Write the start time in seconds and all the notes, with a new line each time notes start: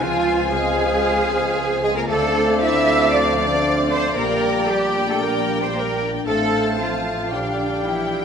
Already playing: G#3 C4 G#4 C5 G#5
0.01 C#2 C#3 F3 F4 F5
0.27 G#3
0.53 G#3 G#4 C5
0.79 F4
1.05 C#4
1.31 G#3
1.56 C5
1.82 G#3 F4 G#4
1.96 A#3 A#4
2.08 D2 D3 A3 C4 A4 C5 D5 F5
2.35 D4
2.61 E4 F4 E5
2.88 C5
3.13 F3 D4 D5
3.40 D4 D5
3.66 F4
3.91 C4 C5
4.17 A#1 A#2 G3 A#3 A#4 D5 G5
4.44 G3
4.68 G3 G4 A#4
4.96 D4
5.08 A3 A4
5.21 A#2 A#3 A#4
5.48 G3
5.60 C4 C5
5.74 A#3 A#4
6.01 D4
6.26 A1 A2 A3 C4 A4 C5 F5 A5
6.80 F3 F4 C5
7.06 F4
7.31 A#1 A#2 D3 G3 D4 D5 G5
7.58 G3
7.85 E3 E4 D5
8.12 F4